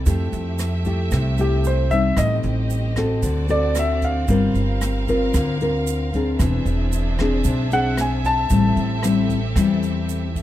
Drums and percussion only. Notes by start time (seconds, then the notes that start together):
0.06 kick, closed hi-hat, shaker
0.33 closed hi-hat, shaker
0.59 cross-stick, closed hi-hat, shaker
0.85 kick, closed hi-hat, shaker
1.11 kick, cross-stick, closed hi-hat, shaker
1.38 closed hi-hat, shaker
1.64 closed hi-hat, shaker
1.90 kick, closed hi-hat, shaker
2.17 kick, cross-stick, closed hi-hat, shaker
2.43 closed hi-hat, shaker
2.70 closed hi-hat, shaker
2.96 kick, cross-stick, closed hi-hat, shaker
3.23 kick, closed hi-hat, shaker
3.49 closed hi-hat, shaker
3.75 cross-stick, closed hi-hat, shaker
4.02 kick, closed hi-hat, shaker
4.28 kick, closed hi-hat, shaker
4.55 closed hi-hat, shaker
4.81 cross-stick, closed hi-hat, shaker
5.08 kick, closed hi-hat, shaker
5.34 kick, cross-stick, closed hi-hat, shaker
5.60 closed hi-hat, shaker
5.87 closed hi-hat, shaker
6.13 kick, closed hi-hat, shaker
6.39 kick, cross-stick, closed hi-hat, shaker
6.65 closed hi-hat, shaker
6.92 closed hi-hat, shaker
7.19 kick, cross-stick, closed hi-hat, shaker
7.44 kick, closed hi-hat, shaker
7.71 closed hi-hat, shaker
7.97 cross-stick, closed hi-hat, shaker
8.24 kick, closed hi-hat, shaker
8.50 kick, closed hi-hat, shaker
8.76 closed hi-hat, shaker
9.03 cross-stick, closed hi-hat, shaker
9.29 kick, closed hi-hat, shaker
9.56 kick, cross-stick, closed hi-hat, shaker
9.82 closed hi-hat, shaker
10.09 closed hi-hat, shaker
10.36 kick, closed hi-hat, shaker